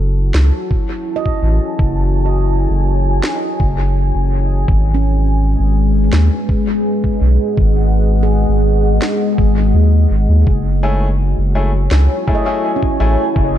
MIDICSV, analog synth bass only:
0, 0, Header, 1, 2, 480
1, 0, Start_track
1, 0, Tempo, 722892
1, 1190, Time_signature, 4, 2, 24, 8
1, 9018, End_track
2, 0, Start_track
2, 0, Title_t, "Analog synth bass"
2, 0, Program_c, 0, 38
2, 0, Note_on_c, 0, 30, 95
2, 207, Note_off_c, 0, 30, 0
2, 229, Note_on_c, 0, 37, 91
2, 339, Note_off_c, 0, 37, 0
2, 946, Note_on_c, 0, 33, 97
2, 1057, Note_off_c, 0, 33, 0
2, 1190, Note_on_c, 0, 30, 94
2, 1770, Note_off_c, 0, 30, 0
2, 1792, Note_on_c, 0, 30, 91
2, 2126, Note_off_c, 0, 30, 0
2, 2390, Note_on_c, 0, 30, 93
2, 2730, Note_off_c, 0, 30, 0
2, 2753, Note_on_c, 0, 30, 75
2, 3087, Note_off_c, 0, 30, 0
2, 3109, Note_on_c, 0, 32, 90
2, 3690, Note_off_c, 0, 32, 0
2, 3714, Note_on_c, 0, 32, 94
2, 4047, Note_off_c, 0, 32, 0
2, 4069, Note_on_c, 0, 39, 92
2, 4179, Note_off_c, 0, 39, 0
2, 4788, Note_on_c, 0, 35, 103
2, 4898, Note_off_c, 0, 35, 0
2, 5031, Note_on_c, 0, 32, 94
2, 5611, Note_off_c, 0, 32, 0
2, 5632, Note_on_c, 0, 32, 96
2, 5967, Note_off_c, 0, 32, 0
2, 6230, Note_on_c, 0, 32, 102
2, 6465, Note_off_c, 0, 32, 0
2, 6469, Note_on_c, 0, 39, 84
2, 6681, Note_off_c, 0, 39, 0
2, 6707, Note_on_c, 0, 32, 95
2, 6818, Note_off_c, 0, 32, 0
2, 6833, Note_on_c, 0, 39, 88
2, 6935, Note_off_c, 0, 39, 0
2, 6951, Note_on_c, 0, 30, 93
2, 7531, Note_off_c, 0, 30, 0
2, 7555, Note_on_c, 0, 30, 93
2, 7888, Note_off_c, 0, 30, 0
2, 7909, Note_on_c, 0, 37, 98
2, 8019, Note_off_c, 0, 37, 0
2, 8631, Note_on_c, 0, 33, 102
2, 8740, Note_off_c, 0, 33, 0
2, 8871, Note_on_c, 0, 30, 95
2, 9018, Note_off_c, 0, 30, 0
2, 9018, End_track
0, 0, End_of_file